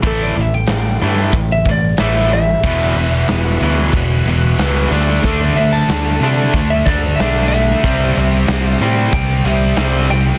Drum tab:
CC |--------|x-------|--------|--------|
HH |oooooooo|-ooooooo|oooooooo|oooooooo|
SD |--o---o-|--o---o-|--oo--o-|--o---o-|
BD |o---oo--|o---o---|o---oo--|o---o---|